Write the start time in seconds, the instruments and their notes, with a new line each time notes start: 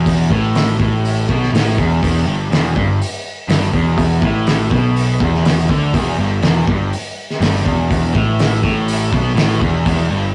Already playing: picked electric bass E1, overdriven electric guitar E2
0.06 kick, open hi-hat
0.30 picked electric bass A1, overdriven electric guitar A2, kick
0.55 snare, open hi-hat
0.79 picked electric bass A1, overdriven electric guitar A2, kick
1.05 open hi-hat
1.29 picked electric bass B1, overdriven electric guitar B2, kick
1.43 snare
1.52 picked electric bass A1, overdriven electric guitar A2, snare, open hi-hat
1.68 snare
1.78 picked electric bass E1, overdriven electric guitar E2, kick
2.03 picked electric bass E1, overdriven electric guitar E2, kick, open hi-hat
2.27 picked electric bass G1, overdriven electric guitar G2
2.50 picked electric bass E1, overdriven electric guitar E2, snare, open hi-hat
2.75 picked electric bass G1, overdriven electric guitar G2, kick
3.02 open hi-hat
3.48 picked electric bass G1, overdriven electric guitar G2, snare, open hi-hat
3.63 snare
3.73 picked electric bass E1, overdriven electric guitar E2, kick
3.98 kick, open hi-hat
4.22 picked electric bass A1, overdriven electric guitar A2, kick
4.47 snare, open hi-hat
4.71 picked electric bass B1, overdriven electric guitar B2, kick
4.97 open hi-hat
5.20 picked electric bass E1, overdriven electric guitar E2, kick
5.35 snare
5.45 snare, open hi-hat
5.58 snare
5.68 picked electric bass D2, overdriven electric guitar D3, kick
5.93 picked electric bass E1, overdriven electric guitar E2, kick, open hi-hat
6.18 picked electric bass G1, overdriven electric guitar G2
6.42 picked electric bass E1, overdriven electric guitar E2, snare, open hi-hat
6.67 picked electric bass G1, overdriven electric guitar G2, kick
6.93 open hi-hat
7.31 snare
7.40 picked electric bass G1, overdriven electric guitar G2, snare, open hi-hat
7.56 snare
7.64 picked electric bass E1, overdriven electric guitar E2, kick
7.91 kick, open hi-hat
8.14 picked electric bass A1, overdriven electric guitar A2, kick
8.39 snare, open hi-hat
8.63 picked electric bass A1, overdriven electric guitar A2, kick
8.88 open hi-hat
9.12 picked electric bass B1, overdriven electric guitar B2, kick
9.35 picked electric bass A1, overdriven electric guitar A2, snare, open hi-hat
9.50 snare
9.60 picked electric bass E1, overdriven electric guitar E2, kick
9.86 picked electric bass E1, overdriven electric guitar E2, kick, open hi-hat
10.10 picked electric bass G1, overdriven electric guitar G2